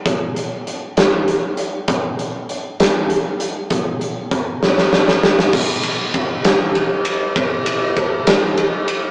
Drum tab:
CC |------------|------------|------------|x-----------|
RD |------------|------------|------------|--x-x-x-x-x-|
HH |x-x-x-x-x-x-|x-x-x-x-x-x-|x-x-x-------|------------|
SD |------o-----|------o-----|------oooooo|------o-----|
BD |o-----------|o-----------|o---o-------|o---o-------|

CC |------------|
RD |x-x-x-x-x-x-|
HH |------------|
SD |------o-----|
BD |o---o-------|